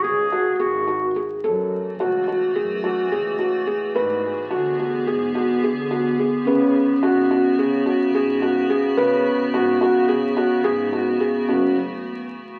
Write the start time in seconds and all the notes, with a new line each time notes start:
0.02 C#2 G#4
0.32 F#4
0.59 G#1 F#4 G#4
0.87 F#4
1.16 G#4
1.42 F#2 E3 A3 F#4 A4
2.00 C#2 F#4
2.28 F#4
2.55 F#2 G#4
2.84 F#4
3.11 C#2 G#4
3.39 F#4
3.67 G#4
3.92 G#2 D3 B3 G#4 B4
4.50 D3 F#4
4.79 F#4
5.07 G#2 G#4
5.35 F#4
5.62 D3 G#4
5.91 F#4
6.19 G#4
6.45 C#3 B3 C#4 F#4 B4
7.03 G#2 F#4
7.31 F#4
7.58 C#3 G#4
7.86 F#4
8.13 G#2 G#4
8.42 F#4
8.70 G#4
8.97 C#3 B4
9.53 G#2 F#4
9.81 F#4
10.09 C#3 G#4
10.37 F#4
10.64 G#2 G#4
10.93 F#4
11.20 G#4
11.48 F#1 C#4 F#4